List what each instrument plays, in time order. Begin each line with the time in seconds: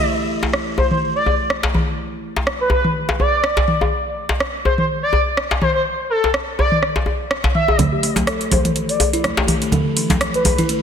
0.43 djembe slap
0.53 cross-stick
0.78 analog synth lead C5, djembe tone
0.91 analog synth lead C5, mid tom
1.15 analog synth lead D5
1.26 djembe tone
1.50 cross-stick
1.63 djembe slap
1.74 mid tom, djembe tone
2.36 djembe slap
2.47 cross-stick
2.61 analog synth lead B4
2.70 analog synth lead B4, djembe tone
2.84 mid tom
3.09 djembe slap
3.19 analog synth lead D5, djembe tone
3.44 cross-stick
3.57 djembe slap, djembe tone
3.68 mid tom
3.81 djembe tone
4.29 djembe slap
4.40 cross-stick
4.65 analog synth lead C5, djembe tone
4.78 analog synth lead C5, mid tom
5.03 analog synth lead D5
5.13 djembe tone
5.37 cross-stick
5.51 djembe slap
5.62 analog synth lead C5, mid tom, djembe tone
5.75 analog synth lead C5
6.10 analog synth lead A4
6.24 djembe slap
6.34 cross-stick
6.58 analog synth lead D5, djembe tone
6.72 mid tom
6.83 cross-stick
6.96 djembe slap
7.06 djembe tone
7.31 cross-stick
7.44 djembe slap, djembe tone
7.55 analog synth lead E5, mid tom
7.68 djembe tone
7.79 kalimba A3, closed hi-hat, high conga, low conga
7.92 kalimba G4
8.03 kalimba A3, open hi-hat
8.16 kalimba A3, closed hi-hat, djembe slap, high conga
8.27 kalimba A4, cross-stick, closed hi-hat
8.41 closed hi-hat
8.51 kalimba E3, analog synth lead C5, open hi-hat, high conga, djembe tone
8.65 analog synth lead C5, closed hi-hat, mid tom
8.76 closed hi-hat
8.89 analog synth lead D5, open hi-hat
9.00 open hi-hat, djembe tone
9.13 kalimba E4, closed hi-hat
9.24 kalimba A3, cross-stick, closed hi-hat, high conga
9.37 kalimba G4, djembe slap
9.48 kalimba A3, open hi-hat, mid tom, djembe tone
9.62 kalimba A3, closed hi-hat
9.72 kalimba A4, closed hi-hat, high conga, low conga
9.97 kalimba E3, open hi-hat
10.10 closed hi-hat, djembe slap, high conga
10.21 cross-stick, closed hi-hat
10.34 analog synth lead B4, closed hi-hat
10.44 analog synth lead B4, open hi-hat, high conga, djembe tone
10.58 kalimba E4, closed hi-hat, mid tom
10.69 kalimba A3, closed hi-hat